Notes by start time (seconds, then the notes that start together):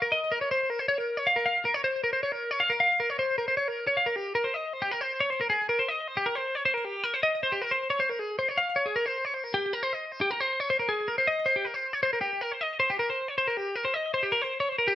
0.02 A#4
0.12 D#5
0.32 A#4
0.41 C#5
0.51 C5
0.70 A#4
0.79 C5
0.88 C#5
0.98 A#4
1.17 C#5
1.27 F5
1.36 A#4
1.46 F5
1.65 A#4
1.74 C#5
1.84 C5
2.04 A#4
2.13 C5
2.23 C#5
2.32 A#4
2.51 C#5
2.60 F5
2.70 A#4
2.80 F5
3.00 A#4
3.10 C#5
3.19 C5
3.38 A#4
3.48 C5
3.57 C#5
3.68 A#4
3.87 C#5
3.97 F5
4.06 A#4
4.16 G4
4.35 A#4
4.44 C5
4.54 D#5
4.73 C5
4.82 G4
4.92 A#4
5.01 C5
5.20 C#5
5.30 C5
5.41 A#4
5.50 G#4
5.69 A#4
5.79 C5
5.89 D#5
6.08 C5
6.17 G4
6.26 A#4
6.35 C5
6.55 C#5
6.65 C5
6.74 A#4
6.85 G4
7.04 A#4
7.14 C5
7.23 D#5
7.43 C5
7.52 G4
7.62 A#4
7.71 C5
7.90 C#5
8.00 C5
8.10 A#4
8.19 G#4
8.39 C5
8.49 C#5
8.58 F5
8.76 C#5
8.86 G#4
8.96 A#4
9.06 C5
9.25 C#5
9.34 C5
9.44 A#4
9.54 G4
9.73 A#4
9.83 C5
9.93 D#5
10.12 C5
10.21 G4
10.31 A#4
10.41 C5
10.60 C#5
10.70 C5
10.79 A#4
10.89 G#4
11.08 A#4
11.18 C5
11.27 D#5
11.46 C5
11.56 G4
11.65 A#4
11.74 C5
11.93 C#5
12.03 C5
12.13 A#4
12.21 G4
12.41 A#4
12.52 C5
12.61 D#5
12.80 C5
12.90 G4
12.99 A#4
13.10 C5
13.28 C#5
13.38 C5
13.47 A#4
13.57 G4
13.76 A#4
13.85 C5
13.94 D#5
14.14 C5
14.23 G4
14.32 A#4
14.42 C5
14.60 C#5
14.69 C5
14.79 A#4
14.88 G4